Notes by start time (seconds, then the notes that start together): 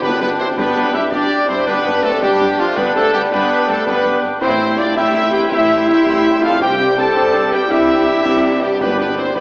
0.01 G1 G2 G3 B3 D4 B4 G5 D6, concert bass drum, snare, crash
0.20 G1 G2 B3 D4 B4
0.38 C4 E4 C5
0.56 G1 G2 B3 D4 B4 G5 D6, concert bass drum, snare
0.75 G1 G2
0.94 G1 G2 E4 G4 E5
1.11 G1 G2 D4 G4 D5 G5 D6, concert bass drum, snare
1.47 G1 G2 C4 E4 C5, snare
1.66 G1 G2 B3 D4 B4 G5 D6, concert bass drum, snare
1.85 G1 G2
2.03 G1 G2 A3 C4 A4
2.22 G1 G2 G3 B3 D4 G4 G5 D6, concert bass drum, snare
2.40 G1 G2, snare
2.59 F3 A3 F4, snare
2.76 G1 G2 B3 D4 B4 G5 D6, concert bass drum, snare
2.96 G1 G2 A3 C4 A4, snare
3.13 G1 G2 G3 B3 G4, snare
3.31 G1 G2 B3 D4 B4 G5 D6, concert bass drum, snare
3.67 G1 G2 A3 C4 A4
3.85 G1 G2 B3 D4 B4 G5 D6, concert bass drum, snare
4.04 G1 G2
4.23 G1 G2, snare
4.41 A1 A2 G3 C4 E4 C5 G5 C6, concert bass drum, snare, crash
4.77 D4 F4 D5
4.95 A1 A2 E4 G4 E5 G5 C6, concert bass drum, snare
5.31 G4 B4 G5
5.49 A1 A2 E4 G4 E5 G5 C6, concert bass drum, snare
5.86 E4 G4 E5, snare
6.06 A1 A2, concert bass drum, snare
6.42 F4 A4 F5
6.60 C2 C3 D4 G4 C5 G5 D6, concert bass drum, snare
6.80 snare
6.98 A4 C5 A5, snare
7.17 C2 C3, concert bass drum, snare
7.35 snare
7.52 G4 B4 G5, snare
7.69 C2 C3 E4 G4 E5 G5 D6, concert bass drum, snare
8.25 C2 C3, concert bass drum, snare
8.62 G3 B3 G4, snare
8.80 G1 G2 G3 B3 D4 G4 B4 G5 D6, concert bass drum, snare, crash
8.98 B3 D4 B4
9.17 C4 E4 C5
9.35 G1 G2 B3 D4 G4 B4 G5 D6, concert bass drum, snare